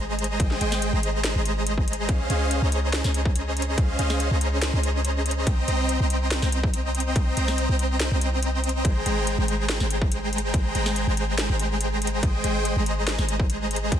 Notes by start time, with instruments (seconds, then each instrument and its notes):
Already playing: 808-style bass G#1, supersaw synth G#3 G#4 C5 D#5 A#5
0.19 closed hi-hat
0.24 closed hi-hat
0.40 808-style bass G#1, supersaw synth C5 G5, kick, closed hi-hat
0.51 snare
0.61 808-style bass G#1, supersaw synth G#3 G#4 C5 D#5 G5, closed hi-hat
0.72 snare
0.82 closed hi-hat
0.93 808-style bass G#1, supersaw synth G#3 G#4 C5 D#5 A#5
1.03 closed hi-hat
1.24 snare, closed hi-hat
1.35 808-style bass G#1, supersaw synth G#3 G#4 C5 D#5 A#5
1.46 closed hi-hat
1.67 closed hi-hat
1.78 kick
1.88 closed hi-hat
1.93 closed hi-hat
2.09 808-style bass C#2, supersaw synth C#4 G#4 C5 D#5 F5, kick, closed hi-hat
2.30 808-style bass C#2, supersaw synth C#4 G#4 C5 D#5 F5, closed hi-hat
2.51 closed hi-hat
2.62 808-style bass C#2, supersaw synth C#4 G#4 C5 D#5 A#5
2.72 closed hi-hat
2.93 snare, closed hi-hat
3.04 808-style bass C#2, supersaw synth C#4 G#4 C5 D#5 A#5, snare
3.14 closed hi-hat
3.25 kick
3.36 closed hi-hat
3.57 closed hi-hat
3.62 closed hi-hat
3.78 808-style bass C#2, supersaw synth F5, kick, closed hi-hat
3.99 808-style bass C#2, supersaw synth C#4 G#4 C5 D#5 F5, closed hi-hat
4.10 snare
4.20 closed hi-hat
4.31 808-style bass C#2, supersaw synth C#4 G#4 C5 D#5 A#5
4.41 closed hi-hat
4.62 snare, closed hi-hat
4.73 808-style bass C#2, supersaw synth C#4 G#4 C5 D#5 A#5
4.83 closed hi-hat
5.05 closed hi-hat
5.26 closed hi-hat
5.31 closed hi-hat
5.47 808-style bass C2, supersaw synth C4 D#5 G5, kick, closed hi-hat
5.68 808-style bass C2, supersaw synth C4 C5 D#5 G5 A#5, closed hi-hat
5.89 closed hi-hat
6.00 808-style bass C2, supersaw synth C4 C5 D#5 G5 A#5
6.10 closed hi-hat
6.31 snare, closed hi-hat
6.42 808-style bass C2, supersaw synth C4 C5 D#5 G5 A#5, snare
6.52 closed hi-hat
6.63 kick
6.74 closed hi-hat
6.95 closed hi-hat
7.00 closed hi-hat
7.16 808-style bass C2, kick, closed hi-hat
7.37 808-style bass C2, supersaw synth C4 C5 D#5 G5 A#5, closed hi-hat
7.48 snare
7.58 closed hi-hat
7.69 808-style bass C2, supersaw synth C4 C5 D#5 G5 A#5
7.79 closed hi-hat
8.00 snare, closed hi-hat
8.11 808-style bass C2, supersaw synth C4 C5 D#5 G5 A#5
8.21 closed hi-hat
8.43 closed hi-hat
8.64 closed hi-hat
8.69 closed hi-hat
8.85 808-style bass G#1, supersaw synth G#3 G#4 C5, kick, closed hi-hat
9.06 808-style bass G#1, supersaw synth G#3 G#4 C5 G5 A#5, closed hi-hat
9.27 closed hi-hat
9.38 808-style bass G#1, supersaw synth G#3 G#4 C5 G5 A#5
9.48 closed hi-hat
9.69 snare, closed hi-hat
9.80 808-style bass G#1, supersaw synth G#3 G#4 C5 G5 A#5, snare
9.90 closed hi-hat
10.02 kick
10.12 closed hi-hat
10.33 closed hi-hat
10.38 closed hi-hat
10.54 808-style bass G#1, supersaw synth G#3 G#4 C5 G5 A#5, kick, closed hi-hat
10.75 808-style bass G#1, supersaw synth G#3 G#4 C5 G5 A#5, closed hi-hat
10.86 snare
10.96 closed hi-hat
11.07 808-style bass G#1, supersaw synth G#3 G#4 C5 G5 A#5
11.17 closed hi-hat
11.38 snare, closed hi-hat
11.49 808-style bass G#1, supersaw synth G#3 G#4 C5 G5 A#5
11.59 closed hi-hat
11.81 closed hi-hat
12.02 closed hi-hat
12.07 closed hi-hat
12.23 808-style bass G#1, supersaw synth G#3 G#4 C5 D#5 G5, kick, closed hi-hat
12.44 808-style bass G#1, supersaw synth G#3 G#4 C5 D#5 G5, closed hi-hat
12.65 closed hi-hat
12.76 808-style bass G#1, supersaw synth G#3 G#4 C5 D#5 A#5
12.86 closed hi-hat
13.07 snare, closed hi-hat
13.19 808-style bass G#1, supersaw synth G#3 G#4 C5 D#5 A#5, snare
13.29 closed hi-hat
13.40 kick
13.50 closed hi-hat
13.71 closed hi-hat
13.76 closed hi-hat
13.92 808-style bass G#1, kick, closed hi-hat